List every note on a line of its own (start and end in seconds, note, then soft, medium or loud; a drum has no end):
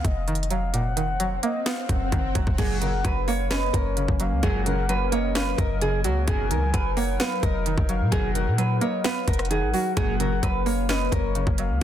0.00 0.26 D#3 medium
0.00 0.49 F#3 medium
0.00 0.74 A#3 medium
0.00 0.97 B3 medium
0.00 swell medium
0.04 1.39 F1 loud
0.04 0.48 D#5 medium
0.04 kick medium
0.04 closed hi-hat medium
0.28 0.95 D#3 medium
0.28 closed hi-hat soft
0.35 closed hi-hat medium
0.43 closed hi-hat medium
0.50 1.19 F#3 medium
0.50 0.72 F5 medium
0.50 closed hi-hat medium
0.74 1.89 A#2 loud
0.74 1.39 F#5 loud
0.74 closed hi-hat medium
0.97 2.11 D#3 medium
0.97 closed hi-hat medium
1.20 2.34 F#3 medium
1.20 closed hi-hat medium
1.43 2.58 A#3 medium
1.43 1.65 D#5 medium
1.43 closed hi-hat medium
1.66 2.58 B3 loud
1.66 1.88 F5 medium
1.66 finger snap medium
1.66 snare loud
1.66 closed hi-hat medium
1.89 2.11 F1 loud
1.89 2.57 F#2 medium
1.89 2.54 F#5 medium
1.89 kick medium
1.89 closed hi-hat medium
2.12 2.34 F#1 loud
2.12 2.58 D#3 medium
2.12 kick loud
2.12 closed hi-hat medium
2.35 2.46 F#1 loud
2.35 2.58 F#3 medium
2.35 kick loud
2.35 closed hi-hat medium
2.47 2.58 F#1 loud
2.47 kick medium
2.58 3.03 F#1 loud
2.58 2.91 C#2 loud
2.58 3.73 F#2 loud
2.58 2.91 A#2 loud
2.58 11.83 F#3 medium
2.58 2.91 F#3 loud
2.58 6.24 A#3 medium
2.58 6.24 C#4 medium
2.58 2.76 G#4 loud
2.58 11.77 A#4 medium
2.58 3.24 F#5 loud
2.58 kick loud
2.58 closed hi-hat medium
2.58 crash loud
2.81 3.96 C#3 medium
2.81 2.99 A#4 medium
2.81 closed hi-hat medium
3.05 3.71 F#1 loud
3.05 4.19 F#3 medium
3.05 3.22 B4 medium
3.05 kick medium
3.05 closed hi-hat medium
3.28 4.43 A#3 medium
3.28 3.45 C#5 medium
3.28 3.50 F5 medium
3.28 open hi-hat medium
3.50 4.66 C#4 loud
3.50 3.68 B4 loud
3.50 3.73 D#5 medium
3.50 finger snap medium
3.50 snare loud
3.50 closed hi-hat medium
3.73 4.07 F#1 loud
3.73 4.42 F#2 medium
3.73 4.39 A#4 medium
3.73 4.17 C#5 loud
3.73 kick medium
3.73 closed hi-hat medium
3.97 4.65 C#3 medium
3.97 closed hi-hat medium
4.08 4.33 F#1 loud
4.08 kick medium
4.20 4.88 F#3 medium
4.20 4.42 F5 medium
4.20 closed hi-hat medium
4.31 4.42 C#2 loud
4.43 5.54 F#1 loud
4.43 4.76 C#2 loud
4.43 5.57 F#2 loud
4.43 4.76 A#2 loud
4.43 4.76 F#3 loud
4.43 4.61 G#4 loud
4.43 5.08 F#5 loud
4.43 kick loud
4.43 closed hi-hat medium
4.66 5.80 C#3 medium
4.66 4.84 A#4 medium
4.66 closed hi-hat medium
4.89 6.03 F#3 medium
4.89 5.07 B4 medium
4.89 closed hi-hat medium
5.12 6.28 A#3 medium
5.12 5.30 C#5 medium
5.12 5.34 D#5 medium
5.12 closed hi-hat medium
5.35 6.28 C#4 loud
5.35 5.53 B4 medium
5.35 5.57 F5 medium
5.35 finger snap medium
5.35 snare loud
5.35 closed hi-hat medium
5.58 6.06 F#1 loud
5.58 6.26 F#2 medium
5.58 5.76 A#4 medium
5.58 6.02 D#5 medium
5.58 kick medium
5.58 closed hi-hat medium
5.81 6.28 C#3 medium
5.81 5.99 G#4 loud
5.81 closed hi-hat medium
6.04 6.26 C#2 loud
6.04 6.28 F#3 medium
6.04 6.22 F#4 medium
6.04 6.27 C#5 medium
6.04 closed hi-hat medium
6.28 6.52 F#1 loud
6.28 6.60 D#2 loud
6.28 7.43 F#2 medium
6.28 6.60 B2 loud
6.28 6.60 F#3 loud
6.28 9.93 D#4 medium
6.28 6.45 G#4 loud
6.28 6.93 G#5 loud
6.28 kick loud
6.28 closed hi-hat medium
6.51 6.73 C#2 loud
6.51 7.65 D#3 medium
6.51 6.68 A#4 medium
6.51 closed hi-hat medium
6.74 7.18 F#1 loud
6.74 7.88 F#3 medium
6.74 6.91 B4 medium
6.74 kick medium
6.74 closed hi-hat medium
6.97 8.12 A#3 medium
6.97 7.14 C#5 medium
6.97 7.19 F#5 medium
6.97 open hi-hat medium
7.20 8.35 B3 loud
7.20 7.37 B4 loud
7.20 7.42 F5 loud
7.20 finger snap medium
7.20 snare loud
7.20 closed hi-hat medium
7.43 7.76 F1 loud
7.43 8.08 A#4 medium
7.43 7.86 D#5 medium
7.43 kick medium
7.43 closed hi-hat medium
7.66 8.34 D#3 medium
7.66 closed hi-hat medium
7.78 8.02 F#1 loud
7.78 kick loud
7.89 8.57 F#3 medium
7.89 8.11 F5 medium
7.89 closed hi-hat medium
8.01 8.12 A#2 loud
8.12 8.48 F#1 loud
8.12 8.45 D#2 loud
8.12 9.28 F#2 medium
8.12 8.45 B2 medium
8.12 8.45 F#3 loud
8.12 8.29 G#4 loud
8.12 8.77 F#5 loud
8.12 kick loud
8.12 closed hi-hat medium
8.35 9.49 D#3 medium
8.35 8.53 A#4 medium
8.35 closed hi-hat medium
8.47 8.80 A#2 loud
8.58 9.72 F#3 loud
8.58 8.76 B4 medium
8.58 closed hi-hat medium
8.81 9.97 A#3 medium
8.81 8.99 C#5 medium
8.81 9.03 D#5 medium
8.81 closed hi-hat medium
9.04 9.97 B3 loud
9.04 9.22 B4 medium
9.04 9.26 F5 medium
9.04 finger snap medium
9.04 snare loud
9.04 closed hi-hat medium
9.28 9.64 F1 loud
9.28 9.45 A#4 medium
9.28 9.93 F#5 medium
9.28 kick medium
9.28 closed hi-hat medium
9.33 closed hi-hat medium
9.39 cross-stick loud
9.39 closed hi-hat medium
9.45 closed hi-hat soft
9.51 9.97 D#3 medium
9.51 9.68 G#4 medium
9.51 closed hi-hat medium
9.62 9.73 G#1 loud
9.74 9.97 F#3 medium
9.74 9.91 F#4 medium
9.74 open hi-hat medium
9.97 10.41 F#1 loud
9.97 10.30 C#2 loud
9.97 11.11 F#2 loud
9.97 10.30 A#2 loud
9.97 10.30 F#3 loud
9.97 11.83 A#3 medium
9.97 11.83 C#4 medium
9.97 10.14 G#4 loud
9.97 10.62 F#5 loud
9.97 kick loud
9.97 closed hi-hat medium
10.20 11.34 C#3 medium
10.20 10.37 A#4 medium
10.20 closed hi-hat medium
10.43 11.09 F#1 loud
10.43 11.57 F#3 medium
10.43 10.61 B4 medium
10.43 kick medium
10.43 closed hi-hat medium
10.66 11.81 A#3 medium
10.66 10.84 C#5 medium
10.66 10.88 F5 medium
10.66 open hi-hat medium
10.89 11.83 C#4 loud
10.89 11.07 B4 loud
10.89 11.11 D#5 medium
10.89 finger snap medium
10.89 snare loud
10.89 closed hi-hat medium
11.12 11.45 F#1 loud
11.12 11.80 F#2 medium
11.12 11.77 A#4 medium
11.12 11.56 C#5 loud
11.12 kick medium
11.12 closed hi-hat medium
11.35 11.83 C#3 medium
11.35 closed hi-hat medium
11.47 11.71 F#1 loud
11.47 kick medium
11.58 11.83 F#3 medium
11.58 11.80 F5 medium
11.58 closed hi-hat medium
11.70 11.81 C#2 loud